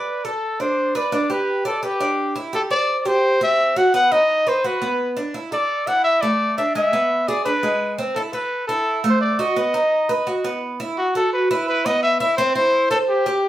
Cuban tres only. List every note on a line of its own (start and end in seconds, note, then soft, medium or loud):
0.00 0.24 D5 medium
0.25 0.59 A4 medium
0.60 0.94 D4 medium
0.95 1.12 B4 medium
1.12 1.29 D4 medium
1.30 1.64 G4 medium
1.65 1.82 D5 medium
1.83 2.00 B4 medium
2.01 2.35 D4 medium
2.36 2.53 E4 medium
2.53 2.70 G4 medium
2.70 3.05 C5 medium
3.05 3.40 G4 medium
3.41 3.75 C4 medium
3.76 3.93 F#4 medium
3.94 4.11 B3 medium
4.12 4.46 D#4 medium
4.47 4.64 B4 medium
4.64 4.81 F#4 medium
4.82 5.16 B3 medium
5.17 5.34 D4 medium
5.34 5.51 E4 medium
5.52 5.86 A4 medium
5.87 6.21 E4 medium
6.23 6.56 A3 medium
6.58 6.75 D4 medium
6.75 6.92 G#3 medium
6.93 7.27 B3 medium
7.28 7.45 G#4 medium
7.46 7.62 D4 medium
7.63 7.97 G#3 medium
7.98 8.15 C4 medium
8.16 8.33 E4 medium
8.33 8.67 A4 medium
8.69 9.03 E4 medium
9.04 9.38 A3 medium
9.39 9.56 F#4 medium
9.56 9.74 B3 medium
9.74 10.08 D#4 medium
10.09 10.26 B4 medium
10.27 10.44 F#4 medium
10.45 10.79 B3 medium
10.80 10.97 E4 medium
11.15 11.49 F#4 medium
11.51 11.84 E4 medium
11.86 12.20 B3 medium
12.20 12.37 E4 medium
12.38 12.55 C4 medium
12.55 12.90 E4 medium
12.91 13.25 C5 medium
13.26 13.48 G4 medium